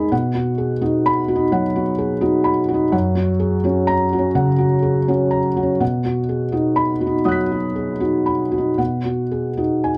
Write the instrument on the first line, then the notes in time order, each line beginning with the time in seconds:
felt piano
Already playing: D#3 D#4 G#4 A#4 G#5 B5
0.12 B2 F#5
0.34 F#4
0.58 G#4
0.82 D#4 F#4
1.06 B5
1.28 F#4
1.36 D#4
1.52 F#3 F#5
1.76 F#4
1.98 G#4
2.21 D#4 F#4
2.44 B5
2.69 F#4
2.74 D#4
2.92 F#2 F#5
3.15 F#4
3.40 G#4
3.64 C#4 F#4
3.87 A#5
4.13 F#4
4.18 C#4
4.35 C#3 F#5
4.58 F#4
4.82 G#4
5.08 C#4 F#4
5.31 A#5
5.57 F#4
5.63 C#4
5.80 B2 F#5
6.05 F#4
6.29 G#4
6.52 D#4 F#4
6.76 B5
7.01 F#4
7.07 D#4
7.25 F#3 F#5 D#6 F#6
7.32 B6
7.52 F#4
7.76 G#4
8.00 D#4 F#4
8.26 B5
8.51 F#4
8.58 D#4
8.78 B2 F#5
9.05 F#4
9.31 G#4
9.57 D#4 F#4
9.84 G#5